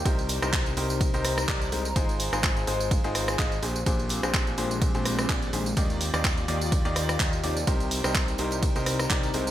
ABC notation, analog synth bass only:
X:1
M:4/4
L:1/16
Q:"Swing 16ths" 1/4=126
K:Cm
V:1 name="Analog synth bass" clef=bass
C,,3 C,,3 C,,3 C,,3 C,,2 C,,2 | A,,,3 A,,,3 A,,,3 A,,,3 A,,,2 B,,,2 | B,,,3 B,,,3 B,,,3 B,,,3 B,,,2 B,,,2 | E,,3 E,,3 E,,3 E,,3 E,,2 E,,2 |
C,,3 C,,3 C,,3 C,,3 C,,2 C,,2 |]